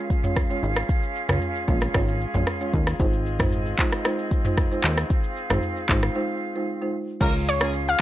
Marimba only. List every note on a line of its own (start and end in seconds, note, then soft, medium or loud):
0.24 0.42 G#3 medium
0.24 0.42 C#4 medium
0.24 0.42 F4 medium
0.24 0.42 C#5 medium
0.50 0.68 G#3 medium
0.50 0.68 C#4 medium
0.50 0.69 F4 medium
0.50 0.69 C#5 medium
1.29 1.47 G#3 medium
1.29 1.47 C#4 medium
1.29 1.47 F4 medium
1.29 1.48 C#5 medium
1.68 1.87 G#3 medium
1.68 1.87 C#4 medium
1.68 1.87 F4 medium
1.68 1.87 C#5 medium
1.94 2.13 G#3 medium
1.94 2.13 C#4 medium
1.94 2.13 F4 medium
1.94 2.13 C#5 loud
2.34 2.52 G#3 medium
2.34 2.53 C#4 medium
2.34 2.53 F4 medium
2.34 2.53 C#5 medium
2.60 2.79 G#3 medium
2.60 2.79 C#4 medium
2.60 2.79 F4 medium
2.60 2.79 C#5 medium
2.99 3.36 G#3 medium
2.99 3.36 D#4 medium
2.99 3.36 F4 medium
2.99 3.37 C5 loud
3.39 3.58 G#3 medium
3.39 3.58 D#4 medium
3.39 3.58 F4 medium
3.39 3.58 C5 medium
3.78 3.97 G#3 medium
3.78 3.98 D#4 medium
3.78 3.98 F4 medium
3.78 3.98 C5 medium
4.05 4.24 G#3 loud
4.05 4.24 D#4 medium
4.05 4.24 F4 medium
4.05 4.24 C5 loud
4.45 4.63 G#3 medium
4.45 4.63 D#4 medium
4.45 4.63 F4 medium
4.45 4.63 C5 medium
4.71 4.89 G#3 medium
4.71 4.90 D#4 medium
4.71 4.90 F4 medium
4.71 4.90 C5 medium
5.50 5.68 G#3 medium
5.50 5.68 D#4 medium
5.50 5.69 F4 medium
5.50 5.69 C5 medium
5.89 6.08 G#3 medium
5.89 6.08 D#4 medium
5.89 6.08 F4 medium
5.89 6.08 C5 medium
6.15 6.34 G#3 medium
6.15 6.34 D#4 medium
6.15 6.34 F4 medium
6.15 6.35 C5 loud
6.55 6.74 G#3 medium
6.55 6.74 D#4 medium
6.55 6.74 F4 medium
6.55 6.74 C5 medium
6.82 7.00 G#3 medium
6.82 7.00 D#4 medium
6.82 7.00 F4 medium
6.82 7.00 C5 medium
7.20 7.57 G#3 medium
7.20 7.57 C#4 medium
7.20 7.58 F4 medium
7.20 7.58 C#5 loud
7.60 7.79 G#3 medium
7.60 7.79 C#4 medium
7.60 7.79 F4 medium
7.60 7.79 C#5 medium